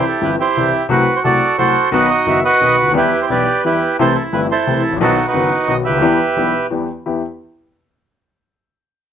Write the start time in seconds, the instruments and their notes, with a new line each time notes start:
Already playing: bandoneon E4 G4
0.09 bandoneon A4
0.21 grand piano G1 G2 E3 G3 C4 G4, bandoneon B4
0.40 bandoneon E4 G4 C5
0.57 grand piano C2 C3 E3 G3 C4 G4
0.89 grand piano C2 C3 F#3 A3 F#4, bandoneon F#4 B4
1.16 bandoneon C5
1.24 grand piano C2 C3 F#3 A3 F#4, bandoneon F#4 A4 D5
1.58 grand piano C2 C3 F#3 A3 F#4, bandoneon F#4 A4 C5
1.92 grand piano B1 B2 D#3 F#3 B3 F#4, bandoneon D#4 F#4 B4
2.10 bandoneon D#5
2.26 grand piano F#1 F#2 D#3 F#3 B3 F#4, bandoneon E5
2.45 bandoneon F#4 B4 D#5
2.61 grand piano B1 B2 D#3 F#3 B3 F#4
2.82 grand piano C#2
2.88 grand piano D2 D#2
2.93 grand piano E2 E3 G3 B3 G4, bandoneon E4 B4
2.97 bandoneon G4
3.22 bandoneon C5
3.29 grand piano B1 B2 E3 G3 B3 G4, bandoneon G4 B4 D5
3.64 grand piano E2 E3 G3 B3 G4, bandoneon E4 G4 B4
3.99 grand piano C2 C3 E3 A3 C4 G4, bandoneon E4 A4 C5
4.15 bandoneon A4
4.33 grand piano G1 G2 E3 A3 C4 G4, bandoneon B4
4.51 bandoneon E4 A4 C5
4.67 grand piano C2 C3 E3 A3 C4 G4
4.89 grand piano G#1 A1
4.96 grand piano A#1
5.00 grand piano B1 B2 D#3 F#3 B3 F#4, bandoneon D#4 F#4 A4
5.27 bandoneon D#4 F#4 B4
5.33 grand piano F#1 F#2 D#3 F#3 B3 F#4
5.68 grand piano B1 B2 D#3 F#3 B3 F#4, bandoneon D#5
5.85 bandoneon G4 B4 E5
5.89 grand piano C#2
5.94 grand piano D2
5.98 grand piano D#2 E3 G3
6.02 grand piano E2 B3 G4
6.37 grand piano B1 B2 E3 G3 B3 G4
6.70 grand piano E2 E3 G3 B3 G4
7.06 grand piano E2 B3 E4 G4